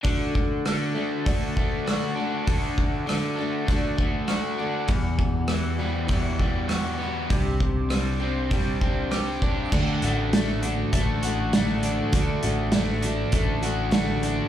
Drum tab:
CC |--------|--------|--------|--------|
HH |o-o-o-o-|o-o-o-o-|o-o-o-o-|o-o-o-o-|
SD |--r---r-|--r---r-|--r---r-|--r---r-|
BD |oo--oo--|oo--oo--|oo--oo--|oo--oo-o|

CC |x-------|--------|
HH |-xxxxxxx|xxxxxxxx|
SD |--o---o-|--o---o-|
BD |o---o---|o---o---|